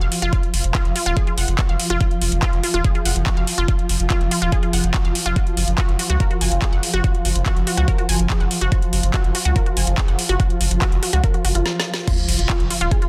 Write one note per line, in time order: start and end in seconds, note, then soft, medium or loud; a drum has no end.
0.00 0.08 F1 medium
0.00 12.06 F3 medium
0.00 12.06 F4 medium
0.00 0.11 F5 medium
0.00 closed hi-hat soft
0.12 open hi-hat loud
0.22 0.29 F1 medium
0.22 0.29 F4 loud
0.22 closed hi-hat medium
0.33 0.40 F4 medium
0.33 kick loud
0.33 closed hi-hat medium
0.43 closed hi-hat soft
0.54 0.60 F1 medium
0.54 open hi-hat loud
0.64 0.71 F1 medium
0.64 closed hi-hat medium
0.75 0.85 F4 medium
0.75 kick loud
0.75 clap loud
0.75 closed hi-hat medium
0.85 0.92 F1 medium
0.85 closed hi-hat soft
0.96 1.00 F4 medium
0.96 open hi-hat loud
1.06 1.13 D#1 medium
1.06 1.16 F4 loud
1.06 closed hi-hat medium
1.17 1.24 G#4 medium
1.17 kick loud
1.17 closed hi-hat medium
1.27 1.37 F4 medium
1.27 closed hi-hat soft
1.38 1.44 F1 loud
1.38 1.42 F#5 medium
1.38 open hi-hat loud
1.48 1.55 F1 medium
1.48 closed hi-hat medium
1.59 1.66 F#4 medium
1.59 kick loud
1.59 clap loud
1.59 closed hi-hat medium
1.69 1.76 F1 medium
1.69 1.79 F5 medium
1.69 closed hi-hat soft
1.80 open hi-hat loud
1.90 1.97 F1 medium
1.90 1.97 F4 loud
1.90 closed hi-hat medium
2.01 2.08 F4 medium
2.01 kick loud
2.01 closed hi-hat medium
2.11 closed hi-hat soft
2.22 2.28 F1 medium
2.22 open hi-hat loud
2.32 2.39 F1 medium
2.32 closed hi-hat medium
2.43 2.53 F4 loud
2.43 kick loud
2.43 clap loud
2.43 closed hi-hat medium
2.53 2.60 F1 medium
2.53 closed hi-hat soft
2.63 2.68 F4 medium
2.63 open hi-hat loud
2.74 2.81 D#1 medium
2.74 2.84 F4 loud
2.74 closed hi-hat soft
2.84 2.91 G#4 medium
2.84 kick loud
2.84 closed hi-hat medium
2.95 3.05 F4 medium
2.95 closed hi-hat soft
3.05 3.12 F1 loud
3.05 3.10 F#5 medium
3.05 open hi-hat loud
3.16 3.23 F1 medium
3.16 closed hi-hat soft
3.26 3.33 F#4 medium
3.26 kick loud
3.26 clap loud
3.26 closed hi-hat soft
3.37 3.44 F1 medium
3.37 3.47 F5 medium
3.37 closed hi-hat soft
3.47 open hi-hat loud
3.58 3.65 F1 medium
3.58 3.65 F4 loud
3.58 closed hi-hat medium
3.68 3.75 F4 medium
3.68 kick loud
3.68 closed hi-hat medium
3.79 closed hi-hat soft
3.89 3.96 F1 medium
3.89 open hi-hat loud
4.00 4.07 F1 medium
4.00 closed hi-hat medium
4.10 4.20 F4 loud
4.10 kick loud
4.10 clap loud
4.10 closed hi-hat medium
4.21 4.28 F1 medium
4.21 closed hi-hat soft
4.31 4.36 F4 medium
4.31 open hi-hat loud
4.42 4.49 D#1 medium
4.42 4.52 F4 loud
4.42 closed hi-hat medium
4.52 4.59 G#4 medium
4.52 kick loud
4.52 closed hi-hat soft
4.63 4.73 F4 medium
4.63 closed hi-hat soft
4.73 4.80 F1 medium
4.73 4.77 F#5 medium
4.73 open hi-hat loud
4.84 4.91 F1 medium
4.84 closed hi-hat soft
4.94 5.01 F#4 medium
4.94 kick loud
4.94 clap loud
4.94 closed hi-hat soft
5.05 5.12 F1 medium
5.05 5.15 F5 medium
5.05 closed hi-hat soft
5.15 open hi-hat loud
5.26 5.33 F1 medium
5.26 5.33 F4 loud
5.26 closed hi-hat soft
5.36 5.43 F#4 medium
5.36 kick loud
5.36 closed hi-hat medium
5.47 closed hi-hat soft
5.57 5.64 F#1 medium
5.57 open hi-hat loud
5.68 5.74 F#1 medium
5.68 closed hi-hat soft
5.78 5.88 F#4 loud
5.78 kick loud
5.78 clap loud
5.78 closed hi-hat medium
5.89 5.95 F#1 medium
5.89 closed hi-hat soft
5.99 6.03 F#4 medium
5.99 open hi-hat loud
6.10 6.16 C#2 medium
6.10 6.20 F#4 loud
6.10 closed hi-hat soft
6.20 6.27 A#4 medium
6.20 kick loud
6.20 closed hi-hat medium
6.31 6.41 F#4 medium
6.31 closed hi-hat soft
6.41 6.48 F#1 loud
6.41 6.45 G#5 medium
6.41 open hi-hat loud
6.52 6.58 F#1 medium
6.52 closed hi-hat medium
6.62 6.69 G#4 medium
6.62 kick loud
6.62 clap loud
6.62 closed hi-hat medium
6.73 6.79 F#1 medium
6.73 6.83 F#5 medium
6.73 closed hi-hat soft
6.83 open hi-hat loud
6.94 7.00 F#1 medium
6.94 7.01 F#4 loud
6.94 closed hi-hat soft
7.04 7.11 F#4 medium
7.04 kick loud
7.04 closed hi-hat medium
7.15 closed hi-hat soft
7.25 7.32 F#1 loud
7.25 open hi-hat loud
7.36 7.42 F#1 medium
7.36 closed hi-hat medium
7.46 7.56 F#4 loud
7.46 kick loud
7.46 clap loud
7.46 closed hi-hat medium
7.56 7.63 F#1 medium
7.56 closed hi-hat soft
7.67 7.71 F#4 medium
7.67 open hi-hat loud
7.77 7.84 C#2 medium
7.77 7.87 F#4 loud
7.77 closed hi-hat medium
7.88 7.95 A#4 medium
7.88 kick loud
7.88 closed hi-hat medium
7.98 8.08 F#4 medium
7.98 closed hi-hat soft
8.09 8.16 F#1 medium
8.09 8.13 G#5 medium
8.09 open hi-hat loud
8.19 8.26 F#1 medium
8.19 closed hi-hat medium
8.30 8.37 G#4 medium
8.30 kick loud
8.30 clap loud
8.30 closed hi-hat medium
8.40 8.47 F#1 medium
8.40 8.50 F#5 medium
8.40 closed hi-hat soft
8.51 open hi-hat loud
8.61 8.68 F#1 medium
8.61 8.68 F#4 loud
8.61 closed hi-hat medium
8.72 8.79 F#4 medium
8.72 kick loud
8.72 closed hi-hat medium
8.82 closed hi-hat soft
8.93 9.00 F#1 medium
8.93 open hi-hat loud
9.03 9.10 F#1 medium
9.03 closed hi-hat medium
9.14 9.24 F#4 loud
9.14 kick loud
9.14 clap loud
9.14 closed hi-hat medium
9.24 9.31 F#1 medium
9.24 closed hi-hat soft
9.35 9.39 F#4 medium
9.35 open hi-hat loud
9.45 9.52 C#2 medium
9.45 9.55 F#4 loud
9.45 closed hi-hat medium
9.56 9.63 A#4 medium
9.56 kick loud
9.56 closed hi-hat medium
9.66 9.76 F#4 medium
9.66 closed hi-hat soft
9.77 9.84 F#1 medium
9.77 9.81 G#5 medium
9.77 open hi-hat loud
9.87 9.94 F#1 medium
9.87 closed hi-hat medium
9.98 10.05 G#4 medium
9.98 kick loud
9.98 clap loud
9.98 closed hi-hat medium
10.08 10.15 F#1 medium
10.08 10.18 F#5 medium
10.08 closed hi-hat soft
10.19 open hi-hat loud
10.29 10.36 F#1 medium
10.29 10.36 F#4 loud
10.29 closed hi-hat medium
10.40 10.47 F#4 medium
10.40 kick loud
10.40 closed hi-hat medium
10.50 closed hi-hat soft
10.61 10.67 F#1 medium
10.61 open hi-hat loud
10.71 10.78 F#1 medium
10.71 closed hi-hat medium
10.82 10.92 F#4 loud
10.82 kick loud
10.82 clap loud
10.82 closed hi-hat medium
10.92 10.99 F#1 medium
10.92 closed hi-hat soft
11.03 11.07 F#4 medium
11.03 open hi-hat loud
11.13 11.20 C#2 medium
11.13 11.23 F#4 loud
11.13 closed hi-hat medium
11.24 11.31 A#4 medium
11.24 kick loud
11.24 closed hi-hat medium
11.34 11.43 F#4 medium
11.34 closed hi-hat soft
11.45 11.51 F#1 loud
11.45 11.52 F#4 medium
11.45 open hi-hat loud
11.55 11.62 F#1 medium
11.55 11.62 F4 medium
11.55 closed hi-hat medium
11.66 snare medium
11.80 snare medium
11.94 snare loud
12.08 13.09 F3 medium
12.08 12.15 F4 medium
12.08 13.09 F4 medium
12.08 kick loud
12.08 closed hi-hat medium
12.08 crash loud
12.08 sub drop medium
12.18 closed hi-hat soft
12.29 12.35 F1 medium
12.29 open hi-hat loud
12.39 12.46 F1 medium
12.39 closed hi-hat medium
12.49 12.59 F4 loud
12.49 kick loud
12.49 clap loud
12.49 closed hi-hat medium
12.60 12.67 F1 medium
12.60 closed hi-hat soft
12.70 12.75 F4 medium
12.70 open hi-hat loud
12.81 12.88 D#1 medium
12.81 12.91 F4 loud
12.81 closed hi-hat medium
12.91 12.98 G#4 medium
12.91 kick loud
12.91 closed hi-hat medium
13.02 13.09 F4 medium
13.02 closed hi-hat soft